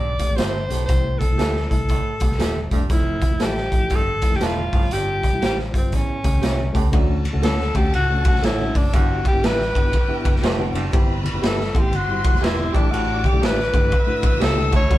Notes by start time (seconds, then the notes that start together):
Already playing: B1 G2 D5
0.19 A3 C4 G4, kick, closed hi-hat, muted conga
0.28 A1, high conga
0.36 G1 A2 G4 C5 E5, snare, closed hi-hat
0.53 high conga
0.69 B1 A2 A3 C4 G4, closed hi-hat, muted conga, low conga
0.86 C2 C3 A3 C4 C5, kick, closed hi-hat, muted conga, low conga
0.90 E4
1.18 A4, kick, closed hi-hat, muted conga, high conga
1.30 C2 A3 C4 E4
1.38 D2 G4 A4 E5, snare, closed hi-hat, high conga
1.53 snare, high conga
1.69 C2 A3 C4 E4 A4, kick, closed hi-hat, muted conga
1.88 A2, kick, closed hi-hat, muted conga, high conga
2.20 B1 A3 C4 G4, kick, closed hi-hat
2.30 C2, snare, high conga
2.39 D#1 G4 A4 E5, snare, closed hi-hat
2.56 high conga
2.71 E1 G2 A3 C4 D4, kick, closed hi-hat, muted conga, low conga
2.89 F1 F2 F3 A3 E4, kick, closed hi-hat, low conga
3.21 kick, closed hi-hat, muted conga, high conga
3.31 E1 F3 A3 E4
3.40 A1 F4 G4 A4 E5, snare, closed hi-hat, high conga
3.56 snare, high conga
3.72 A1 F3 A3 E4, kick, closed hi-hat, muted conga
3.90 G1 G2, kick, closed hi-hat, high conga
3.95 A4
4.22 F3 A3 E4, kick, closed hi-hat, muted conga
4.32 F1, snare, high conga
4.36 G4
4.41 E1 A2 F4 A4 E5, snare, closed hi-hat
4.45 F4
4.57 high conga
4.72 G1 A2 G3 C4 E4, kick, open hi-hat, muted conga, low conga
4.79 F4
4.91 G1 G2 G4, closed hi-hat, muted conga, low conga
5.23 kick, closed hi-hat, high conga
5.32 B1 G3 C4 E4
5.42 A1 G4 C5 F5, snare, closed hi-hat, high conga
5.57 snare, high conga
5.73 G1 G3 C4 F4, kick, closed hi-hat
5.77 C4
5.92 A1 E2 C#4, kick, closed hi-hat, muted conga, high conga
6.23 C#2 A3 C#4 G4, kick, closed hi-hat
6.35 high conga
6.42 C2 G4 C#5 E5, snare, closed hi-hat
6.60 high conga
6.73 C#2 A2 A3 C#4 G4, kick, closed hi-hat, muted conga, low conga
6.92 D2 A3 C#4 D4 F#4 A4 A5, kick, ride, low conga
7.25 ride, high conga
7.33 C#2 A3 C#4 D4 F#4
7.42 D2 A4 C#5 F#5, snare, ride, muted conga
7.58 snare, high conga
7.74 D2 A3 C#4 D4 F#4 G4, kick, ride, low conga
7.93 C#2 F#4, ride, high conga
8.09 A3 C#4 D4 F#4
8.25 F#4, kick, ride, muted conga
8.34 B1, snare, high conga
8.43 A1 E4 A4 C#5 F#5, snare, ride
8.59 A3 C#4 D4 F#4, high conga
8.75 F#1 D4, kick, open hi-hat, ride, low conga
8.91 G1 G2 B3 D4 E4 F#4 G4 G5, kick, hi-hat pedal, ride, low conga
9.24 G4, kick, ride, high conga
9.33 G1 B3 D4 E4 G4
9.42 A1 G4 B4 E5, snare, ride, muted conga
9.57 snare, high conga
9.74 G1 B3 D4 E4 G4, kick, ride, muted conga, low conga
9.92 kick, ride, high conga
10.08 B3 D4 E4 G4, muted fingered electric bass stroke
10.25 F#1, kick, ride, muted conga
10.33 snare, high conga
10.43 F1 A2 G4 B4 E5, snare, ride, muted conga
10.58 B3 D4 E4 F#4, high conga
10.73 F#1 G2, ride, muted conga, low conga
10.91 G1 C3 B3 C4 E4 G4 B4 B5, kick, ride, muted conga, low conga
11.24 ride, muted conga, high conga
11.33 F#1 B3 C4 E4 G4
11.42 G1 G4 B4 E5, snare, ride, muted conga
11.46 A4
11.57 snare, high conga
11.73 A1 B3 C4 E4 G4 C5 C6, kick, ride, muted conga, low conga
11.79 G4
11.92 G1 F#4, ride, muted conga, high conga
12.08 G3 C4 E4 G4
12.24 F#4, kick, ride, muted conga
12.33 F#1, snare, high conga
12.41 E1 E4 G4 B4 E5, snare, ride
12.58 B3 C4 E4 G4, high conga
12.73 A1 A3 D4 E4 G4 D5 E5 D6, kick, ride, low conga
12.92 A1 A2 F#4, ride, low conga
13.24 G4, kick, ride, muted conga, high conga
13.32 B1 A3 D4 E4 G4
13.40 A1 G4 D5 E5, snare, ride, muted conga
13.45 B4
13.57 snare, high conga
13.72 G1 A3 D4 E4 G4, kick, ride, muted conga, low conga
13.90 E5 E6, kick, ride, high conga
14.06 A3 D4 E4 F#4, muted fingered electric bass stroke
14.23 A1, kick, ride
14.33 high conga
14.40 C#2 B2 G4 A4 D5 E5, snare, ride
14.56 A3 D4 E4 G4, high conga
14.72 A2 C#5, kick, ride, low conga
14.82 D2
14.90 D2 A3 C#4 D4 F#4 A4 C#6, kick, ride, low conga